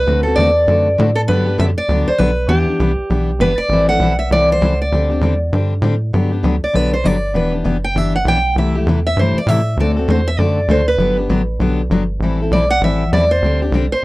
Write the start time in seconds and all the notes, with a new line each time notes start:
Already playing: B4
0.07 D2 D3 A3 C4 F#4 A4
0.23 F#4 A4
0.28 C4
0.36 E2 D3 A3 C4 F#4 A4 D5
0.67 F#2 D3 A3 C4 F#4 A4
0.98 A2 D3 A3 C4 F#4 A4
1.15 A4
1.28 G2 D3 F#3 B3 D4 G4 B4
1.46 B3 D4 G4
1.58 F#2 D3 F#3 B3 D4 G4 E5
1.78 D5
1.89 D2 D3 F#3 B3 D4 G4
2.07 D2 C5
2.18 B1 D3 F#3 B3 D4 G4 B4
2.48 E2 E3 B3 D4 G4
2.67 E2 B3 D4 G4
2.80 C2 E3 B3 D4 G4
3.10 B1 E3 B3 D4 G4
3.39 G1 E3 B3 D4 G4 B4
3.57 G1 D5
3.69 A1 E3 G3 C4
3.73 E4 A4
3.88 C4 E4 A4 F#5
3.99 B1 E3 G3 C4 E4 A4
4.19 E5
4.31 C2 E3 G3 C4 E4 A4 D5
4.52 C5
4.61 C#2 E3 G3 C4 E4 A4
4.82 D5
4.92 D2 D3 G3 C4 D4 G4
5.10 C4 D4 G4
5.21 E2 D3 G3 C4 D4 G4
5.53 G2 D3 G3 C4 D4 G4
5.82 A2 D3 G3 C4 D4 G4
6.13 G2 D3 F#3 B3 D4 G4
6.31 B3 D4 G4
6.43 D2 D3 F#3 B3 D4 G4
6.64 D5
6.73 B1 D3 F#3 B3 D4 G4 B4
6.94 C5
7.04 G1 D3 F#3 B3 D4 G4 D5
7.34 E1 E3 B3 D4 G4 B4
7.52 B3 D4 G4
7.64 F#1 E3 B3 D4 G4
7.84 G5
7.95 G1 E3 B3 D4 G4 E5
8.16 F#5
8.25 B1 E3 B3 D4 G4 G5
8.56 C2 C3 E3 A3 E4 G4 E5
8.75 A3 E4 G4
8.86 E2 C3 E3 A3 E4 G4
9.07 E5
9.17 G2 C3 E3 A3 E4 G4 C5
9.35 G2 D5
9.46 A2 C3 E3 A3 E4 G4 E5
9.77 D2 D3 A3 C4 F#4 A4 D5
9.96 C4 F#4 A4
10.08 E2 D3 A3 C4 F#4 A4 C5
10.28 E5
10.38 F#2 D3 A3 C4 F#4 A4 D5
10.68 D2 D3 A3 C4 F#4 A4 C5
10.88 B4
10.98 G1 D3 F#3 B3 D4 G4
11.17 B3 D4 G4
11.29 A1 D3 F#3 B3 D4 G4
11.59 B1 D3 F#3 B3 D4 G4
11.90 G1 D3 F#3 B3 D4 G4
12.20 A1 E3 G3 C4 E4
12.24 A4
12.42 C4 E4 A4
12.51 B1 E3 G3 C4 E4 A4 D5
12.71 F#5
12.81 A1 E3 G3 C4 E4 A4 E5
13.12 E2 E3 G3 C4 E4 A4 D5
13.31 C5
13.42 D2 D3 G3 C4 D4 G4
13.62 C4 D4 G4
13.72 C2 D3 G3 C4 D4 G4
13.90 C2 C5